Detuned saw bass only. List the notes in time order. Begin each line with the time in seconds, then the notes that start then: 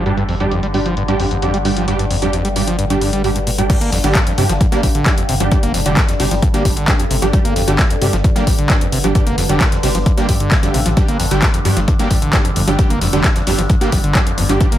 Already playing: G1
3.81 G1
3.92 G1
4.04 G1
4.38 G2
4.49 G1
4.83 A1
4.95 A1
5.29 G1
5.40 G1
5.63 F1
5.74 F1
5.86 F1
6.20 G1
6.31 G1
6.65 G1
6.77 G1
7.11 G1
7.22 G1
7.45 G1
7.56 G1
7.68 G1
8.02 G2
8.13 G1
8.47 A1
8.59 A1
8.92 G1
9.04 G1
9.27 F1
9.38 F1
9.50 F1
9.83 G1
9.95 G1
10.29 G2
10.40 G2
10.74 A1
10.86 A1
11.09 G1
11.20 G1
11.31 G1
11.65 G2
11.77 G1
12.11 A1
12.22 A1
12.56 G1
12.67 G1
12.90 F1
13.01 F1
13.13 F1
13.47 G1
13.58 G1
13.92 G1
14.04 G1
14.38 G1
14.49 G1
14.72 G1